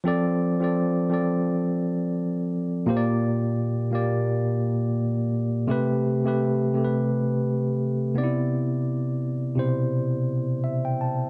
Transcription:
X:1
M:4/4
L:1/16
Q:"Swing 16ths" 1/4=85
K:Flyd
V:1 name="Tine electric piano"
[F,CAd]2 z [F,CAd]2 z [F,CAd]4- [F,CAd] z4 z | [_B,,_B,Gcd]4 z2 [B,,B,Gd]4- [B,,B,Gd] z4 z | [C,A,GB]2 z [C,A,GB]2 z [C,A,GAB]4- [C,A,GAB] z3 [C,B,_E=Ed]2- | [C,B,_E=Ed]4 z2 [B,,C,Ec]4- [B,,C,Ec] z e g a2 |]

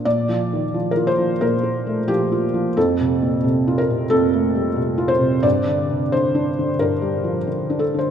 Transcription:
X:1
M:4/4
L:1/16
Q:1/4=89
K:Bb
V:1 name="Felt piano"
d4- d B c2 B4 G4 | A6 B2 A6 c2 | d4 c4 B6 A c |]
V:2 name="Felt piano" clef=bass
(3B,,2 F,2 E,2 (3F,2 F2 F,2 (3B,,2 B,2 A,2 (3F,2 F2 F,2 | (3F,,2 C,2 B,,2 (3C,2 F2 C,2 (3F,,2 A,2 G,2 (3C,2 F2 C,2 | (3G,,2 D,2 C,2 (3D,2 D2 D,2 (3G,,2 G,2 F,2 (3D,2 D2 D,2 |]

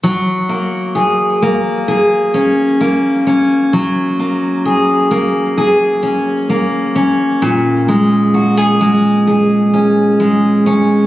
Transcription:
X:1
M:4/4
L:1/16
Q:1/4=65
K:F#
V:1 name="Steel-string acoustic guitar"
F,2 A,2 G2 A,2 G2 C2 A,2 C2 | F,2 A,2 G2 A,2 G2 C2 A,2 C2 | A,,2 G,2 F G G,2 G2 C2 G,2 C2 |]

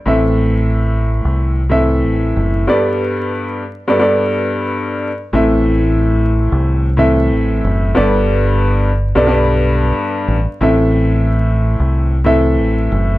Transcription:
X:1
M:4/4
L:1/16
Q:"Swing 16ths" 1/4=91
K:Am
V:1 name="Upright piano"
[A,,E,CAe]8- [A,,E,CAe] z [A,,E,CAe]6 | [G,,G,B,Ad]6 z [G,,G,B,Ad] [G,,G,B,Ad]6 z2 | [A,,E,CAe]8- [A,,E,CAe] z [A,,E,CAe]6 | [G,,G,B,Ad]6 z [G,,G,B,Ad] [G,,G,B,Ad]6 z2 |
[A,,E,CAe]8- [A,,E,CAe] z [A,,E,CAe]6 |]
V:2 name="Fingered electric bass" clef=bass
A,,,6- A,,, C,,4- C,, A,,,2 ^F,,,2 | z16 | A,,,6- A,,, C,,4- C,, A,,,2 ^F,,,2 | G,,,6- G,,, B,,,4- B,,, z2 A,,, z |
A,,,6- A,,, C,,4- C,, A,,,2 ^F,,,2 |]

